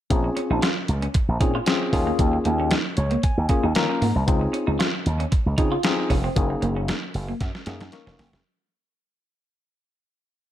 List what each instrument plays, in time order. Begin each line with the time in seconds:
0.10 slap bass A#1, tine electric piano C4 C#4 F4 G#4, kick, closed hi-hat
0.24 muted clean electric guitar stroke
0.37 clean electric guitar C#4, closed hi-hat
0.50 slap bass A#1, clean electric guitar D#4
0.62 clean electric guitar F4, snare, closed hi-hat
0.77 muted clean electric guitar stroke
0.88 slap bass C#2, closed hi-hat
1.02 clean electric guitar C#4, closed hi-hat
1.14 muted clean electric guitar stroke, kick, closed hi-hat
1.28 slap bass A#1
1.40 slap bass A#2, tine electric piano C4 C#4 F4 G#4, clean electric guitar D#4, kick, closed hi-hat
1.55 clean electric guitar F4
1.66 tine electric piano C4 C#4 F4 G#4, muted clean electric guitar stroke, snare, closed hi-hat
1.93 slap bass D#2, tine electric piano A#3 C#4 F4 G#4, clean electric guitar C#4, kick, open hi-hat
2.07 clean electric guitar A#3
2.19 slap bass D#2, kick, closed hi-hat
2.33 muted clean electric guitar stroke
2.45 slap bass D#2, clean electric guitar A#3, closed hi-hat
2.60 clean electric guitar C#4
2.71 clean electric guitar D#4, snare, closed hi-hat
2.85 muted clean electric guitar stroke
2.97 slap bass C#2, tine electric piano C#5, closed hi-hat
3.11 clean electric guitar A#3, closed hi-hat
3.23 tine electric piano G#5, muted clean electric guitar stroke, kick, closed hi-hat
3.37 slap bass D#2
3.49 tine electric piano A#3 C#4 F4 G#4, clean electric guitar C#4, kick, closed hi-hat
3.63 slap bass D#2, clean electric guitar D#4
3.75 slap bass D#3, tine electric piano A#3 C#4 F4 A#4 A#5, muted clean electric guitar stroke, snare, closed hi-hat
3.89 clean electric guitar C#4
4.02 slap bass G#2, clean electric guitar A#3, open hi-hat
4.16 slap bass C2
4.27 slap bass C#2, tine electric piano C4 D#4 F4 G#4, kick, closed hi-hat
4.41 muted clean electric guitar stroke
4.53 clean electric guitar C#4, closed hi-hat
4.67 slap bass C#2, clean electric guitar D#4
4.79 clean electric guitar F4, snare, closed hi-hat
4.94 muted clean electric guitar stroke
5.06 slap bass D#2, closed hi-hat
5.20 clean electric guitar C#4, closed hi-hat
5.32 muted clean electric guitar stroke, kick, closed hi-hat
5.46 slap bass C#2
5.58 slap bass C#3, tine electric piano C4 D#4 F4 G#4, clean electric guitar D#4, kick, closed hi-hat
5.72 clean electric guitar F4
5.83 tine electric piano C4 D#4 F4 G#4, muted clean electric guitar stroke, snare, closed hi-hat
6.10 slap bass F1, clean electric guitar C#4, kick, open hi-hat
6.24 clean electric guitar C4
6.36 slap bass F#1, tine electric piano A#3 C#4 D#4 G#4, kick, closed hi-hat
6.50 muted clean electric guitar stroke
6.62 slap bass F#1, clean electric guitar A#3, closed hi-hat
6.76 clean electric guitar C#4
6.88 clean electric guitar D#4, snare, closed hi-hat
7.02 muted clean electric guitar stroke
7.14 slap bass F#1, open hi-hat
7.28 clean electric guitar A#3
7.40 slap bass F#2, muted clean electric guitar stroke, kick, snare, closed hi-hat
7.55 snare
7.66 slap bass F#2, tine electric piano A#3 C#4 D#4 G#4, clean electric guitar C#4, snare, closed hi-hat
7.81 slap bass F#2, clean electric guitar D#4, snare, closed hi-hat
7.92 tine electric piano A#3 C#4 D#4 A#4 C#6, muted clean electric guitar stroke, snare, closed hi-hat
8.07 slap bass F1, clean electric guitar C#4, snare
8.19 slap bass F#1, clean electric guitar A#3, snare, open hi-hat
8.33 slap bass F1, snare